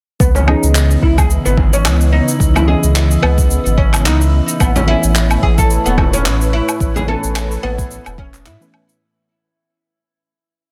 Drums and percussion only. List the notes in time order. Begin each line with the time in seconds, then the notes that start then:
0.20 kick, cabasa
0.35 frame drum, cabasa
0.48 low woodblock
0.63 cabasa
0.75 clap, cabasa
0.91 cabasa
1.03 kick
1.18 kick, cabasa, low woodblock
1.30 cabasa
1.46 cabasa
1.57 kick, frame drum
1.73 cabasa
1.85 clap, cabasa, low woodblock
2.01 cabasa
2.28 cabasa
2.40 kick, cabasa
2.56 frame drum, cabasa, low woodblock
2.83 cabasa
2.95 clap, cabasa
3.11 cabasa
3.23 low woodblock
3.38 kick, cabasa
3.51 cabasa
3.66 cabasa
3.78 kick
3.94 clap, cabasa, low woodblock
4.06 clap, cabasa
4.21 cabasa
4.48 cabasa
4.60 kick, cabasa, low woodblock
4.76 frame drum, cabasa
5.03 cabasa
5.15 clap, cabasa
5.31 cabasa, low woodblock
5.43 kick
5.58 kick, cabasa
5.70 cabasa
5.86 cabasa
5.98 kick, frame drum, low woodblock
6.14 cabasa
6.26 clap, cabasa
6.41 cabasa
6.69 cabasa, low woodblock
6.80 kick, cabasa
6.96 frame drum, cabasa
7.24 cabasa
7.36 clap, cabasa, low woodblock
7.51 cabasa
7.78 kick, cabasa
7.91 cabasa
8.06 cabasa, low woodblock
8.18 kick
8.34 clap, cabasa
8.46 clap, cabasa
8.62 cabasa
8.74 low woodblock
8.89 cabasa